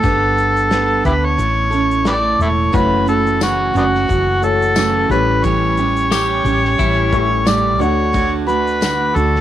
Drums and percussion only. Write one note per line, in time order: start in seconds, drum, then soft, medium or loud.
0.04 kick loud
0.04 shaker medium
0.38 shaker medium
0.56 shaker soft
0.71 snare medium
0.71 shaker medium
1.05 kick medium
1.05 shaker soft
1.39 shaker medium
1.72 shaker soft
1.91 shaker soft
2.05 snare medium
2.05 shaker medium
2.40 shaker soft
2.74 kick loud
2.74 shaker medium
3.08 shaker medium
3.27 shaker soft
3.41 snare medium
3.41 tambourine medium
3.41 shaker medium
3.75 shaker soft
3.95 snare soft
4.09 kick medium
4.09 shaker medium
4.43 shaker soft
4.62 shaker medium
4.76 snare loud
4.76 tambourine medium
4.76 shaker medium
5.11 shaker soft
5.44 kick loud
5.44 shaker medium
5.77 shaker medium
5.97 shaker soft
6.11 snare medium
6.11 tambourine medium
6.11 shaker medium
6.45 shaker soft
6.65 snare soft
6.79 kick medium
6.79 shaker medium
7.13 kick medium
7.13 shaker medium
7.47 snare loud
7.47 tambourine medium
7.47 shaker medium
7.81 shaker soft
8.14 kick loud
8.14 shaker medium
8.48 shaker soft
8.67 shaker soft
8.82 snare medium
8.82 tambourine medium
8.82 shaker medium
9.16 shaker soft
9.36 snare soft